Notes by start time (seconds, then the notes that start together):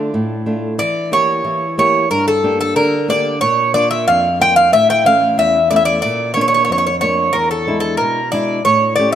Already playing: D3 A3 D4 F4
0.14 A2
0.46 A3 D4 F4
0.78 E3 D5
1.11 A#3 E4 G4 C#5
1.44 E3
1.78 A#3 E4 G4 C#5
2.10 G2 A#4
2.28 A4
2.43 A#3 D4 G4
2.61 A4
2.76 D3 A#4
3.08 A#3 D4 G4 D5
3.41 A#2 C#5
3.74 A#3 D4 F4 D5
3.91 E5
4.08 F2 F5
4.40 A#3 D4 F4 G5
4.56 F5
4.72 A2 E5
4.90 G5
5.04 E3 A3 C#4 F5
5.38 E2 E5
5.71 A3 C#4 E4 D5
5.76 E5
5.85 D5
6.02 A#2 D5
6.34 A#3 D4 F4 C#5
6.41 C#5
6.48 C#5
6.54 C#5
6.65 C#5
6.70 F2 C#5
6.78 C#5
6.87 C#5
7.01 A#3 D4 F4 C#5
7.33 E2 A#4
7.51 A4
7.67 G#3 D4 E4
7.80 A4
7.97 B2 A#4
8.32 G#3 D4 E4 D5
8.65 A2 C#5
8.96 A3 C#4 G4 D5